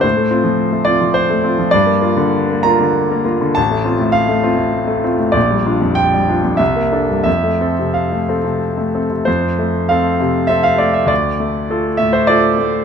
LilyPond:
<<
  \new Staff \with { instrumentName = "Grand piano" } { \time 3/4 \key f \major \tempo 4 = 100 c''4. d''8 c''4 | d''4. bes''4. | a''4 f''4. r8 | d''4 g''4 e''4 |
e''4 f''4 r4 | c''4 f''4 e''16 f''16 d''16 e''16 | d''4. e''16 c''16 d''4 | }
  \new Staff \with { instrumentName = "Grand piano" } { \time 3/4 \key f \major a,16 a16 <c' f'>16 f8 a16 <c' f'>16 f8 a16 <c' f'>16 f16 | g,16 bes16 <bes f'>16 d8 bes16 <bes f'>16 d8 bes16 <bes f'>16 d16 | a,,16 a16 <c' f'>16 a,8 a16 <c' f'>16 a,8 a16 <c' f'>16 a,16 | bes,,16 g16 <d' f'>16 f,8 g16 <d' f'>16 f,16 c,16 bes16 <d' a'>16 g,16 |
f,16 a16 <c' a'>16 c8 a16 <c' a'>16 c8 a16 <c' a'>16 c16 | f,8 a8 <c' a'>8 c8 <c' a'>8 a8 | d,8 a8 <f' a'>8 a,8 <f' a'>8 a8 | }
>>